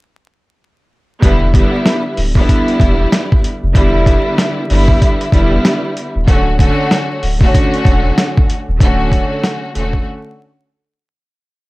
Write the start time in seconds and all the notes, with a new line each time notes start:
1.21 E1 D3 G3 B3 E4, kick, closed hi-hat
1.54 D3 G3 B3 E4, kick, closed hi-hat
1.86 snare, closed hi-hat
2.17 D1, open hi-hat
2.35 D3 G3 B3 E4, kick
2.49 kick, closed hi-hat
2.68 closed hi-hat
2.80 E1, kick, closed hi-hat
3.12 snare, closed hi-hat
3.32 kick
3.44 closed hi-hat
3.63 F1
3.74 E1 D3 G3 B3 E4, kick, closed hi-hat
4.06 kick, closed hi-hat
4.38 snare, closed hi-hat
4.69 G1 D3 G3 B3 E4, open hi-hat
4.88 kick
5.02 kick, closed hi-hat
5.21 closed hi-hat
5.32 E1 D3 G3 B3 E4, kick, closed hi-hat
5.65 snare, closed hi-hat
5.97 closed hi-hat
6.16 D#1
6.26 D1 D3 A3 C#4 F#4, kick, closed hi-hat
6.58 D3 A3 C#4 F#4, kick, closed hi-hat
6.91 snare, closed hi-hat
7.23 D1, open hi-hat
7.41 D3 A3 C#4 F#4, kick
7.55 kick, closed hi-hat
7.74 closed hi-hat
7.85 E1, kick, closed hi-hat
8.18 snare, closed hi-hat
8.37 kick
8.50 closed hi-hat
8.69 D#1
8.80 D1 D3 A3 C#4 F#4, kick, closed hi-hat
9.12 kick, closed hi-hat
9.44 snare, closed hi-hat
9.73 E1 D3 A3 C#4 F#4, closed hi-hat
9.93 kick